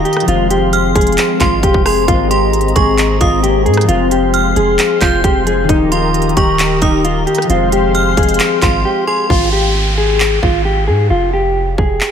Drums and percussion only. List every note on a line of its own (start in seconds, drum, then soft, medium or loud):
0.05 closed hi-hat soft
0.13 cross-stick medium
0.13 closed hi-hat medium
0.20 closed hi-hat medium
0.28 closed hi-hat medium
0.50 closed hi-hat medium
0.73 closed hi-hat medium
0.95 kick loud
0.95 closed hi-hat medium
1.01 closed hi-hat medium
1.07 closed hi-hat medium
1.12 closed hi-hat medium
1.18 clap loud
1.18 closed hi-hat medium
1.40 kick medium
1.40 clap medium
1.40 closed hi-hat medium
1.63 kick loud
1.63 closed hi-hat medium
1.74 kick loud
1.86 cross-stick medium
1.86 open hi-hat medium
2.08 kick loud
2.08 closed hi-hat medium
2.31 closed hi-hat medium
2.53 closed hi-hat medium
2.61 closed hi-hat medium
2.68 closed hi-hat soft
2.76 kick loud
2.76 closed hi-hat medium
2.98 clap loud
2.98 closed hi-hat medium
3.21 kick medium
3.21 closed hi-hat medium
3.44 closed hi-hat medium
3.66 closed hi-hat soft
3.74 cross-stick medium
3.74 closed hi-hat medium
3.81 closed hi-hat medium
3.89 closed hi-hat medium
4.11 closed hi-hat medium
4.34 closed hi-hat medium
4.56 closed hi-hat medium
4.79 clap loud
4.79 closed hi-hat medium
5.01 kick medium
5.01 clap medium
5.01 closed hi-hat medium
5.24 kick loud
5.24 closed hi-hat medium
5.47 closed hi-hat medium
5.69 kick loud
5.69 closed hi-hat medium
5.92 closed hi-hat medium
6.14 closed hi-hat medium
6.22 closed hi-hat medium
6.29 closed hi-hat soft
6.37 kick medium
6.37 closed hi-hat medium
6.59 clap loud
6.59 closed hi-hat medium
6.82 kick medium
6.82 closed hi-hat medium
7.05 closed hi-hat medium
7.27 closed hi-hat soft
7.35 cross-stick medium
7.35 closed hi-hat medium
7.42 closed hi-hat medium
7.50 closed hi-hat medium
7.72 closed hi-hat medium
7.95 closed hi-hat medium
8.17 kick medium
8.17 closed hi-hat medium
8.23 closed hi-hat medium
8.29 closed hi-hat medium
8.34 closed hi-hat medium
8.40 clap loud
8.40 closed hi-hat medium
8.62 kick loud
8.62 clap loud
8.62 closed hi-hat medium
9.30 kick loud
10.20 clap loud
10.43 kick medium
11.78 kick medium
12.01 clap loud